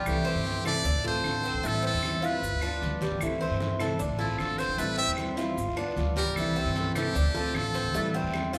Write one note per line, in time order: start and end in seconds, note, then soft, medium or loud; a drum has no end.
0.00 0.24 G3 medium
0.06 0.34 C2 loud
0.06 0.44 C3 medium
0.06 0.44 E3 medium
0.06 0.45 A3 medium
0.06 0.45 C4 medium
0.06 0.46 E4 medium
0.06 0.66 G4 loud
0.06 high conga soft
0.06 long guiro medium
0.06 claves medium
0.06 maracas medium
0.25 0.63 C4 medium
0.25 high conga soft
0.25 maracas soft
0.35 0.82 G2 medium
0.45 0.64 E3 medium
0.45 0.65 A3 medium
0.45 0.65 C4 medium
0.45 0.64 E4 medium
0.45 high conga medium
0.45 short guiro medium
0.45 maracas soft
0.65 0.85 E3 medium
0.65 0.84 A3 medium
0.65 0.84 C4 medium
0.65 0.84 E4 medium
0.65 0.84 A4 medium
0.65 1.03 D5 loud
0.65 high conga soft
0.65 low conga medium
0.65 short guiro medium
0.65 claves medium
0.65 maracas medium
0.84 0.93 D2 loud
0.84 1.04 D4 medium
0.84 muted nylon-string guitar stroke medium
0.84 high conga soft
0.84 long guiro medium
0.84 maracas medium
0.94 1.22 A1 medium
1.04 1.24 A3 medium
1.04 1.24 C4 medium
1.04 1.23 F4 medium
1.04 1.43 A4 medium
1.04 1.68 C5 medium
1.04 high conga soft
1.04 maracas soft
1.24 1.52 A1 medium
1.24 1.62 D3 soft
1.24 1.63 A3 medium
1.24 1.63 C4 medium
1.24 1.64 F4 medium
1.24 high conga medium
1.24 short guiro medium
1.24 claves medium
1.24 maracas soft
1.44 1.63 C4 medium
1.44 short guiro medium
1.44 maracas medium
1.54 1.63 B1 medium
1.63 1.92 A1 loud
1.63 2.02 E3 medium
1.63 2.02 G3 medium
1.63 1.82 A3 medium
1.63 2.02 C4 medium
1.63 2.03 E4 medium
1.63 high conga soft
1.63 long guiro medium
1.63 maracas medium
1.67 1.85 A4 loud
1.82 2.21 C4 medium
1.82 maracas soft
1.87 2.27 A4 loud
1.94 2.40 E2 medium
2.03 2.22 E3 medium
2.03 2.22 G3 medium
2.03 2.23 C4 medium
2.03 2.21 E4 medium
2.03 high conga medium
2.03 short guiro medium
2.03 claves medium
2.03 maracas soft
2.22 2.41 G3 medium
2.22 2.42 C4 medium
2.22 2.41 E4 medium
2.22 2.61 F4 medium
2.22 3.03 B4 medium
2.22 short guiro medium
2.22 maracas medium
2.42 2.51 G1 loud
2.42 muted nylon-string guitar stroke medium
2.42 high conga soft
2.42 long guiro medium
2.42 maracas medium
2.52 2.80 D2 medium
2.61 2.81 B3 medium
2.61 3.00 D4 medium
2.61 2.81 F4 medium
2.61 high conga soft
2.61 claves medium
2.61 maracas soft
2.81 3.10 D2 medium
2.81 3.20 G3 soft
2.81 3.21 B3 soft
2.81 3.21 F4 soft
2.81 high conga medium
2.81 short guiro medium
2.81 maracas soft
3.01 3.21 G3 medium
3.01 high conga medium
3.01 short guiro medium
3.01 maracas medium
3.11 3.20 G1 medium
3.21 3.49 C2 medium
3.21 3.60 C3 medium
3.21 3.59 E3 medium
3.21 3.60 A3 medium
3.21 3.60 C4 medium
3.21 3.61 E4 medium
3.21 high conga soft
3.21 long guiro medium
3.21 claves medium
3.21 maracas medium
3.41 3.79 C4 medium
3.41 high conga soft
3.41 maracas soft
3.51 3.97 G2 medium
3.60 3.79 E3 soft
3.60 3.80 A3 soft
3.60 3.79 C4 medium
3.60 3.78 E4 medium
3.60 high conga loud
3.60 short guiro medium
3.60 maracas soft
3.79 3.98 E3 medium
3.79 3.98 A3 medium
3.79 3.98 C4 medium
3.79 3.99 E4 medium
3.79 3.99 A4 medium
3.79 high conga soft
3.79 low conga medium
3.79 short guiro medium
3.79 claves medium
3.79 maracas medium
3.99 4.08 D2 loud
3.99 4.19 D4 medium
3.99 muted nylon-string guitar stroke medium
3.99 high conga soft
3.99 long guiro medium
3.99 maracas medium
4.09 4.37 A1 medium
4.18 4.38 A3 medium
4.18 4.39 C4 medium
4.18 4.41 E4 medium
4.18 4.38 F4 medium
4.18 4.57 A4 medium
4.18 high conga soft
4.18 maracas soft
4.38 4.67 A1 medium
4.38 4.77 D3 soft
4.38 4.78 A3 soft
4.38 4.78 C4 medium
4.38 4.79 F4 soft
4.38 4.60 A4 medium
4.38 high conga medium
4.38 short guiro medium
4.38 claves medium
4.38 maracas soft
4.58 4.78 C4 medium
4.58 4.80 C5 loud
4.58 short guiro medium
4.58 maracas medium
4.68 4.77 A#1 medium
4.77 5.06 A1 medium
4.77 5.16 E3 medium
4.77 5.17 G3 medium
4.77 4.98 A3 medium
4.77 5.17 C4 medium
4.77 5.18 E4 medium
4.77 4.98 B4 medium
4.77 high conga soft
4.77 long guiro medium
4.77 maracas medium
4.98 5.36 C4 medium
4.98 5.10 E5 loud
4.98 high conga soft
4.98 maracas soft
5.07 5.55 E2 medium
5.17 5.36 E3 soft
5.17 5.37 G3 medium
5.17 5.37 C4 medium
5.17 5.35 E4 medium
5.17 high conga medium
5.17 short guiro medium
5.17 claves medium
5.17 maracas soft
5.36 5.56 G3 medium
5.36 5.57 C4 medium
5.36 5.56 E4 medium
5.36 5.76 F4 medium
5.36 short guiro medium
5.36 maracas medium
5.57 5.67 G1 loud
5.57 muted nylon-string guitar stroke medium
5.57 high conga soft
5.57 long guiro medium
5.57 maracas medium
5.68 5.96 D2 medium
5.76 5.96 B3 medium
5.76 6.15 D4 medium
5.76 5.96 F4 medium
5.76 high conga soft
5.76 claves medium
5.76 maracas soft
5.96 6.25 D2 medium
5.96 6.35 G3 medium
5.96 6.36 B3 soft
5.96 6.36 F4 medium
5.96 high conga medium
5.96 short guiro medium
5.96 maracas soft
6.16 6.55 G3 medium
6.16 6.38 A#4 loud
6.16 high conga medium
6.16 short guiro medium
6.16 maracas medium
6.26 6.35 B1 loud
6.35 6.64 C2 medium
6.35 6.75 C3 medium
6.35 6.75 E3 medium
6.35 6.76 A3 medium
6.35 6.76 C4 medium
6.35 6.76 E4 medium
6.35 6.94 A4 medium
6.35 high conga soft
6.35 long guiro medium
6.35 claves medium
6.35 maracas medium
6.56 6.94 C4 medium
6.56 high conga soft
6.56 maracas soft
6.65 7.13 G2 medium
6.76 6.95 E3 soft
6.76 6.95 A3 medium
6.76 6.95 C4 medium
6.76 6.94 E4 medium
6.76 high conga medium
6.76 short guiro medium
6.76 maracas soft
6.95 7.15 E3 medium
6.95 7.15 A3 medium
6.95 7.15 C4 medium
6.95 7.15 E4 medium
6.95 7.58 G4 medium
6.95 7.15 A4 medium
6.95 high conga soft
6.95 low conga medium
6.95 short guiro medium
6.95 claves medium
6.95 maracas medium
7.15 7.24 D2 loud
7.15 7.34 D4 medium
7.15 muted nylon-string guitar stroke medium
7.15 high conga soft
7.15 long guiro medium
7.15 maracas medium
7.25 7.53 A1 medium
7.34 7.54 A3 medium
7.34 7.55 C4 medium
7.34 7.54 F4 medium
7.34 7.73 A4 medium
7.34 high conga soft
7.34 maracas soft
7.54 7.83 A1 medium
7.54 7.93 D3 medium
7.54 7.94 A3 medium
7.54 7.94 C4 medium
7.54 7.94 F4 medium
7.54 8.15 A4 medium
7.54 high conga medium
7.54 short guiro medium
7.54 claves medium
7.54 maracas soft
7.74 7.94 C4 medium
7.74 short guiro medium
7.74 maracas medium
7.84 7.94 D2 medium
7.93 8.23 A1 medium
7.93 8.32 E3 medium
7.93 8.33 G3 medium
7.93 8.14 A3 medium
7.93 8.33 C4 medium
7.93 8.34 E4 medium
7.93 high conga soft
7.93 long guiro medium
7.93 maracas medium
8.14 8.53 C4 medium
8.14 high conga soft
8.14 maracas soft
8.24 8.58 E2 medium
8.33 8.53 E3 medium
8.33 8.53 G3 medium
8.33 8.54 C4 medium
8.33 8.52 E4 medium
8.33 high conga loud
8.33 short guiro medium
8.33 claves medium
8.33 maracas soft
8.53 8.58 E4 medium
8.53 8.58 F4 medium
8.53 short guiro medium
8.53 maracas medium